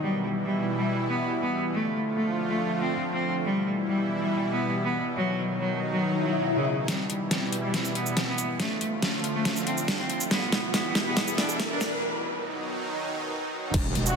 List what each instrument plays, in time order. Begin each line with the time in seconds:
0.02 supersaw synth B2 E3 G3 E4, cello G3
0.45 cello G3
0.78 cello G3
1.10 cello B3
1.42 cello B3
1.74 supersaw synth D3 F3 A3 F4, cello A3
2.17 cello A3
2.49 cello A3
2.81 cello C4
3.13 cello C4
3.45 supersaw synth B2 E3 G3 E4, cello G3
3.88 cello G3
4.20 cello G3
4.52 cello B3
4.85 cello B3
5.17 supersaw synth D#3 F#3 D#4, cello F#3
5.60 cello F#3
5.92 cello F#3
6.02 swell
6.24 cello F#3
6.56 cello C#3
6.88 supersaw synth B2 E3 G3 E4, cello G3, snare, closed hi-hat, riser
7.10 closed hi-hat
7.31 cello G3, snare, closed hi-hat
7.52 closed hi-hat
7.63 cello G3
7.74 snare, closed hi-hat
7.85 shaker
7.95 cello B3, closed hi-hat
8.06 shaker
8.17 snare, closed hi-hat
8.28 cello B3
8.38 closed hi-hat, shaker
8.60 supersaw synth D3 F3 A3 F4, cello A3, snare, closed hi-hat
8.81 closed hi-hat
9.02 cello A3, snare, closed hi-hat
9.24 closed hi-hat
9.35 cello A3
9.45 snare, closed hi-hat
9.56 shaker
9.67 cello C4, closed hi-hat
9.78 shaker
9.88 snare, closed hi-hat
9.99 cello C4
10.10 closed hi-hat
10.21 shaker
10.31 supersaw synth B2 E3 G3 E4, cello B3, snare, closed hi-hat
10.52 snare, closed hi-hat
10.74 cello B3, snare, closed hi-hat
10.95 snare, closed hi-hat
11.06 cello B3
11.17 snare, closed hi-hat
11.28 shaker
11.38 cello D4, snare, closed hi-hat
11.49 shaker
11.60 snare, closed hi-hat
11.71 cello D4
11.81 snare, closed hi-hat, shaker
12.02 supersaw synth B2 D#3 F#3 D#4
13.74 wobble bass E1, supersaw synth E3 G3 B3 F#4, kick, closed hi-hat, crash, impact
13.95 wobble bass E1, closed hi-hat
14.06 brass ensemble G3 E4 F#4, shaker